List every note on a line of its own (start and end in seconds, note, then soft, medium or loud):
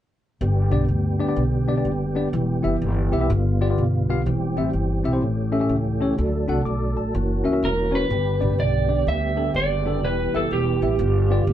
0.41 0.67 G1 loud
0.41 1.16 G2 medium
0.41 2.32 D3 medium
0.41 5.19 G3 medium
0.41 3.27 B3 medium
0.41 3.27 G4 medium
0.71 0.86 B1 medium
0.71 0.83 B3 medium
0.71 0.83 D4 medium
0.71 0.83 G4 medium
0.71 0.84 D5 medium
0.89 1.30 D2 medium
1.19 1.25 B3 medium
1.19 1.25 D4 medium
1.19 1.26 G4 medium
1.19 1.26 D5 medium
1.28 1.42 B3 medium
1.28 1.42 D4 medium
1.28 1.42 G4 medium
1.28 1.42 D5 medium
1.36 1.78 B1 medium
1.68 1.74 B3 medium
1.68 1.74 D4 medium
1.68 1.74 G4 medium
1.68 1.74 D5 medium
1.77 1.90 B3 medium
1.77 1.90 D4 medium
1.77 1.91 G4 medium
1.77 1.91 D5 medium
1.85 2.26 F#1 medium
2.15 2.27 B3 medium
2.15 2.27 D4 medium
2.15 2.28 G4 medium
2.15 2.28 D5 medium
2.33 2.60 E1 medium
2.33 3.09 E3 medium
2.33 3.29 E3 medium
2.63 2.79 F#1 medium
2.63 2.75 B3 medium
2.63 2.75 E4 medium
2.63 2.75 G4 medium
2.63 2.76 E5 medium
2.82 3.08 G1 medium
3.12 3.27 B1 medium
3.12 3.18 B3 medium
3.12 3.18 E4 medium
3.12 3.18 G4 medium
3.12 3.19 E5 medium
3.20 3.29 B3 medium
3.20 3.29 E4 medium
3.20 3.30 G4 medium
3.20 3.30 E5 medium
3.28 3.71 G1 loud
3.28 4.04 G2 medium
3.28 4.25 D3 medium
3.28 4.25 B3 medium
3.28 4.25 F4 medium
3.61 3.67 B3 medium
3.61 3.67 F4 medium
3.61 3.67 G4 medium
3.61 3.67 D5 medium
3.69 3.83 B3 medium
3.69 3.83 F4 medium
3.69 3.83 G4 medium
3.69 3.83 D5 medium
3.78 4.28 B1 medium
4.09 4.20 B3 medium
4.09 4.21 F4 medium
4.09 4.21 G4 medium
4.09 4.21 F5 medium
4.26 4.53 E1 medium
4.26 6.17 E3 medium
4.26 5.02 E3 medium
4.26 5.21 C4 medium
4.26 5.21 G4 medium
4.57 4.72 A1 medium
4.57 4.68 C4 medium
4.57 4.69 E4 medium
4.57 4.68 G4 medium
4.57 4.69 E5 medium
4.73 5.00 G1 medium
5.04 5.22 B1 medium
5.04 5.10 C4 medium
5.04 5.10 E4 medium
5.04 5.11 G4 medium
5.04 5.11 E5 medium
5.12 5.22 C4 medium
5.12 5.22 E4 medium
5.12 5.22 G4 medium
5.12 5.22 C5 medium
5.21 5.63 A1 loud
5.21 5.97 A2 medium
5.21 7.13 A3 medium
5.21 6.18 C#4 medium
5.21 6.18 G4 medium
5.52 5.58 C#4 medium
5.52 5.58 G4 medium
5.52 5.59 A4 medium
5.52 5.59 E5 medium
5.60 5.74 C#4 medium
5.60 5.75 G4 medium
5.60 5.75 A4 medium
5.60 5.75 E5 medium
5.69 6.11 C#2 medium
6.00 6.12 C#4 medium
6.00 6.12 G4 medium
6.00 6.13 A4 medium
6.00 6.13 C#5 medium
6.17 6.45 D2 loud
6.17 6.93 D3 medium
6.17 7.14 F#3 medium
6.17 7.14 D4 medium
6.17 7.14 A4 medium
6.48 6.64 C2 medium
6.48 6.60 D4 medium
6.48 6.60 F#4 medium
6.48 6.60 A4 medium
6.48 6.61 F#5 medium
6.65 6.97 B1 medium
6.65 6.96 D6 medium
6.97 7.12 A1 medium
6.97 7.43 A5 medium
7.15 7.41 F#1 loud
7.15 8.10 E3 medium
7.15 8.10 A#3 medium
7.15 8.10 C#4 medium
7.15 8.11 F#4 medium
7.44 7.51 C#4 medium
7.44 7.51 F#4 medium
7.44 7.51 A#4 medium
7.44 7.51 E5 medium
7.52 7.67 C#4 medium
7.52 7.67 F#4 medium
7.52 7.67 A#4 medium
7.52 7.67 E5 medium
7.63 8.04 E1 medium
7.63 7.93 A#4 medium
7.91 8.04 C#4 medium
7.91 8.04 F#4 medium
7.91 8.04 A#4 medium
7.91 8.04 C#5 medium
7.95 8.56 B4 medium
8.09 8.37 G1 medium
8.09 8.85 G2 medium
8.09 10.02 D3 medium
8.09 11.53 G3 medium
8.09 11.53 B3 medium
8.09 10.98 G4 medium
8.39 8.57 A1 medium
8.39 8.52 B3 medium
8.39 8.52 D4 medium
8.39 8.52 G4 medium
8.39 8.53 D5 medium
8.58 9.00 B1 medium
8.58 9.04 D5 medium
8.88 9.00 B3 medium
8.88 9.01 D4 medium
8.88 9.01 G4 medium
8.88 9.01 D5 medium
9.07 9.48 D2 medium
9.07 9.53 E5 medium
9.36 9.49 B3 medium
9.36 9.49 D4 medium
9.36 9.49 G4 medium
9.36 9.49 A4 medium
9.54 10.02 F#1 medium
9.54 10.06 D5 medium
9.86 9.97 B3 medium
9.86 9.98 D4 medium
9.86 9.98 G4 medium
9.86 9.98 A4 medium
10.02 10.29 E1 loud
10.02 10.79 E3 medium
10.02 11.00 E3 medium
10.02 10.36 B4 medium
10.34 10.49 F#1 medium
10.34 10.45 B3 medium
10.34 10.46 E4 medium
10.34 10.46 G4 medium
10.34 10.53 A4 medium
10.34 10.46 E5 medium
10.51 10.78 E1 medium
10.51 11.53 G4 medium
10.82 10.97 A1 medium
10.82 10.94 B3 medium
10.82 10.94 E4 medium
10.82 10.94 G4 medium
10.82 10.94 E5 medium
10.99 11.40 G1 loud
10.99 11.53 G2 medium
10.99 11.53 D3 medium
10.99 11.53 F4 medium
11.30 11.42 B3 medium
11.30 11.42 F4 medium
11.30 11.42 G4 medium
11.30 11.43 D5 medium
11.47 11.53 F1 medium